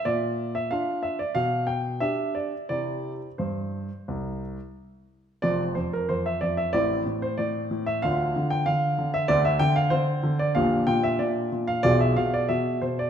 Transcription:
<<
  \new Staff \with { instrumentName = "Grand piano" } { \time 4/4 \key f \major \tempo 4 = 93 << { d''8. e''16 f''8 e''16 d''16 f''8 g''8 e''8 d''8 | d''4 c''2~ c''8 r8 | d''8 c''16 bes'16 c''16 e''16 d''16 e''16 d''8. c''16 d''8. e''16 | f''8. g''16 f''8. e''16 d''16 e''16 g''16 f''16 c''8. d''16 |
f''8 g''16 e''16 d''8. f''16 d''16 e''16 f''16 d''16 e''8 c''16 d''16 | } \\ { r1 | r1 | <c' f'>2 <c' e'>2 | <d' f'>1 |
<d' g'>2 <f' gis'>2 | } >> }
  \new Staff \with { instrumentName = "Grand piano" } { \clef bass \time 4/4 \key f \major bes,4 <d' f'>4 b,4 <d' g'>4 | <c e' g'>4 g,4 c,4 r4 | <f,, f,>8 f,8 f,8 f,8 <a,, a,>8 a,8 a,8 a,8 | <d, d>8 d8 d8 d8 <d, d>8 d8 d8 d8 |
<bes,, bes,>8 bes,8 bes,8 bes,8 <b,, b,>8 b,8 b,8 b,8 | }
>>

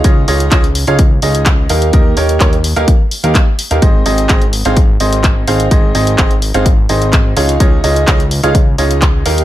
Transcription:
<<
  \new Staff \with { instrumentName = "Grand piano" } { \time 4/4 \key aes \major \tempo 4 = 127 <ees' f' aes' des'' ees''>8 <ees' f' aes' des'' ees''>8 <ees' f' aes' des'' ees''>16 r8 <ees' f' aes' des'' f''>16 r8 <ees' f' aes' des'' ees''>4 <bes ees' g' bes' f''>8 | <bes ees' g' bes' ees''>8 <bes ees' g' bes' des''>8 <bes ees' g' bes' des''>16 r8 <bes ees' g' bes' f''>16 r8. <bes ees' g' bes' f''>8 r8 <bes ees' g' bes' f''>16 | <c' ees' aes' c'' ees''>8 <c' ees' aes' c'' ees''>8 <c' ees' aes' c'' ees''>16 r8 <c' ees' aes' c'' f''>16 r8 <c' ees' aes' c'' ees''>4 <c' ees' aes' c'' f''>8 | <c' ees' aes' c'' ees''>8 <c' ees' aes' c'' ees''>8 <c' ees' aes' c'' ees''>16 r8 <c' ees' aes' c'' f''>16 r8 <c' ees' aes' c'' ees''>4 <ees' f' aes' des'' f''>8 |
<ees' f' aes' des'' ees''>8 <ees' f' aes' des'' ees''>8 <ees' f' aes' des'' ees''>16 r8 <ees' f' aes' des'' f''>16 r8 <ees' f' aes' des'' ees''>4 <bes ees' g' bes' f''>8 | }
  \new Staff \with { instrumentName = "Analog synth bass" } { \clef bass \time 4/4 \key aes \major des,8 des,8 des,8. des,8. des,4 ees,8 | ees,8 ees,8 ees,8. ees,16 r8. ees,16 r8. ees,16 | aes,,8 aes,,8 aes,,8. aes,,8. aes,,4 aes,,8 | aes,,8 aes,,8 aes,,8. aes,,8. aes,,4 des,8 |
des,8 des,8 des,8. des,8. des,4 ees,8 | }
  \new DrumStaff \with { instrumentName = "Drums" } \drummode { \time 4/4 <hh bd>8 hho16 hh16 <hc hh bd>16 hh16 hho16 hh16 <hh bd>8 hho16 hh16 <hc hh bd>8 hho16 hh16 | <hh bd>8 hho16 hh16 <hc hh bd>16 hh16 hho16 hh16 <hh bd>8 hho16 hh16 <hc hh bd>8 hho16 hh16 | <hh bd>8 hho16 hh16 <hc hh bd>16 hh16 hho16 hh16 <hh bd>8 hho16 hh16 <hc hh bd>8 hho16 hh16 | <hh bd>8 hho16 hh16 <hc hh bd>16 hh16 hho16 hh16 <hh bd>8 hho16 hh16 <hc hh bd>8 hho16 hh16 |
<hh bd>8 hho16 hh16 <hc hh bd>16 hh16 hho16 hh16 <hh bd>8 hho16 hh16 <hc hh bd>8 hho16 hh16 | }
>>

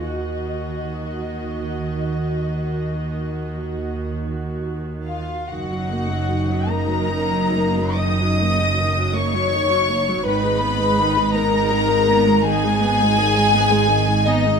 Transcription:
<<
  \new Staff \with { instrumentName = "Violin section" } { \time 12/8 \key ees \minor \tempo 4. = 51 ees''1~ ees''8 r4 f''8 | ges''4. bes''4. ees'''4. des'''4. | ces'''4. bes''4. aes''2~ aes''8 ees''8 | }
  \new Staff \with { instrumentName = "Violin section" } { \time 12/8 \key ees \minor ges'1~ ges'4~ ges'16 r16 f'8 | ges'4. bes'4. ees''4. des''4. | ces''4. bes'4. aes'2~ aes'8 ees'8 | }
  \new Staff \with { instrumentName = "Viola section" } { \clef bass \time 12/8 \key ees \minor << { ges'1~ ges'4.~ ges'16 r16 | ees'1. | ees'1. | } \\ { ges'1~ ges'4.~ ges'16 r16 | ees16 ges16 bes16 ges16 ees16 ges16 bes16 ges16 ees16 ges16 bes16 ges16 ees16 ges16 bes16 ges16 ees16 ges16 bes16 ges16 ees16 ges16 bes16 ges16 | ees16 aes16 ces'16 aes16 ees16 aes16 ces'16 aes16 ees16 aes16 ces'16 aes16 ees16 aes16 ces'16 aes16 ees16 aes16 ces'16 aes16 ees16 aes16 ces'16 aes16 | } >> }
  \new Staff \with { instrumentName = "Cello section" } { \clef bass \time 12/8 \key ees \minor ees1~ ees4.~ ees16 r16 | ges,1. | aes,1. | }
  \new Staff \with { instrumentName = "Double bass section" } { \clef bass \time 12/8 \key ees \minor ees,1~ ees,4.~ ees,16 r16 | ges,,1. | aes,,1. | }
>>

